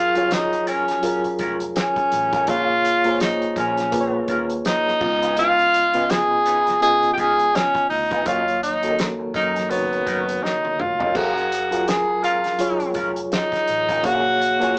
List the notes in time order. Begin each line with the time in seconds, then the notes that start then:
Already playing: F#1 F#3 F4 G#4 A#4
0.15 F#3 G#3 C#4 F4 G#4 A#4 C#5, closed hi-hat
0.31 D#4, snare, closed hi-hat
0.52 muted clean electric guitar stroke, closed hi-hat
0.66 G#3 C#4 F4 A#4, closed hi-hat
0.88 muted clean electric guitar stroke, snare, closed hi-hat
1.02 F#3 F4 G#4 A#4, muted clean electric guitar stroke, closed hi-hat
1.24 muted clean electric guitar stroke, muted fingered electric bass stroke, closed hi-hat
1.39 F1 G#3 C#4 F4 A#4, kick, closed hi-hat
1.60 muted clean electric guitar stroke, closed hi-hat
1.75 C#4, muted clean electric guitar stroke, snare, closed hi-hat
1.96 muted clean electric guitar stroke, kick, closed hi-hat
2.12 A1, closed hi-hat
2.33 G#3 C#4 F4 A#4, kick, closed hi-hat
2.47 A#1 G#3 A#3 C#4 F4 G#4 A#4 C#5, kick, closed hi-hat
2.85 muted clean electric guitar stroke, closed hi-hat
3.04 G#3 A#3 C#4 F4 G#4 A#4 C5, closed hi-hat
3.14 C#5
3.20 D#4, snare, closed hi-hat
3.42 muted clean electric guitar stroke, closed hi-hat
3.56 A#1 G#3 C#4 F4 A#4, kick, closed hi-hat
3.77 muted clean electric guitar stroke, snare, closed hi-hat
3.92 A#3 F4 G#4 B4, muted clean electric guitar stroke, kick, closed hi-hat
4.00 C#5
4.13 muted clean electric guitar stroke
4.28 D#2 G#3 C#4 F4 A#4, kick, closed hi-hat
4.50 muted clean electric guitar stroke, closed hi-hat
4.65 D#4, muted clean electric guitar stroke, snare, closed hi-hat
4.87 muted clean electric guitar stroke, snare
5.00 C#2 C#3 B3 F4 D#5, kick, crash
5.22 G#3 D#4 F4 B4, closed hi-hat
5.37 G#3 D#4 F4 B4, closed hi-hat
5.59 closed hi-hat
5.74 muted clean electric guitar stroke, closed hi-hat
5.93 C#3 G#3 B3 D#4 F4 B4 D#5, closed hi-hat
6.10 G#4, snare, closed hi-hat
6.31 muted clean electric guitar stroke
6.45 G#3 D#4 F4 B4, closed hi-hat
6.67 muted clean electric guitar stroke, snare, closed hi-hat
6.81 C#3 B3 F4 G#4 D#5, muted clean electric guitar stroke, closed hi-hat
7.03 muted clean electric guitar stroke, muted fingered electric bass stroke, closed hi-hat
7.13 G4
7.18 C#2 G#3 D#4 F4 G#4 B4, kick, closed hi-hat
7.39 muted clean electric guitar stroke, closed hi-hat
7.54 C#4, muted clean electric guitar stroke, snare, closed hi-hat
7.75 muted clean electric guitar stroke, kick, closed hi-hat
7.90 D2 D#4, open hi-hat
8.11 G#3 D#4 F4 B4, kick, closed hi-hat
8.25 D#2 D#3 F#3 A#3 C#4 D#4 F4 A#4 C#5, kick, closed hi-hat
8.48 closed hi-hat
8.62 D#4, muted clean electric guitar stroke, closed hi-hat
8.82 D#3 F#3 A#3 C#4 D#4 F#4 A4 A#4, closed hi-hat
8.91 A#4
8.99 snare, closed hi-hat
9.19 muted clean electric guitar stroke
9.34 F#2 F#3 C#4 D#4 A#4, kick, closed hi-hat
9.55 muted clean electric guitar stroke, snare, closed hi-hat
9.69 C#3 B3 F#4 A#4 C#5, muted clean electric guitar stroke, closed hi-hat
9.76 D#3
9.91 muted clean electric guitar stroke, closed hi-hat
10.06 F#2 F#3 C#4 D#4 A#4, kick, closed hi-hat
10.27 muted clean electric guitar stroke, closed hi-hat
10.42 D#4, muted clean electric guitar stroke, snare
10.63 muted clean electric guitar stroke, high tom
10.80 F1 F4, mid tom
11.00 F#3 C#4 D#4 A#4, floor tom
11.14 F#1 F#3 G#3 C#4 F4 F#4 G#4 A#4 F5, kick, crash
11.37 closed hi-hat
11.51 muted clean electric guitar stroke, closed hi-hat
11.71 F#3 G#3 C#4 F4 G#4 A#4, closed hi-hat
11.88 G#4, snare, closed hi-hat
12.08 muted clean electric guitar stroke
12.23 G#3 C#4 F4 A#4, closed hi-hat
12.44 muted clean electric guitar stroke, snare, closed hi-hat
12.58 F#3 F4 G#4 C#5, muted clean electric guitar stroke, closed hi-hat
12.80 muted clean electric guitar stroke, muted fingered electric bass stroke, closed hi-hat
12.94 F1 G#3 C#4 F4 A#4, kick, closed hi-hat
13.16 muted clean electric guitar stroke, closed hi-hat
13.31 D#4, muted clean electric guitar stroke, snare, closed hi-hat
13.52 muted clean electric guitar stroke, kick, snare, closed hi-hat
13.67 A1, closed hi-hat
13.89 G#3 C#4 F4 A#4, kick, closed hi-hat
14.03 A#1 G#3 A#3 C#4 F4 F#4 G#4 A#4 C#5 F5, kick, closed hi-hat
14.40 muted clean electric guitar stroke, closed hi-hat
14.60 G#3 A#3 C#4 F4 G#4 A#4 C#5, closed hi-hat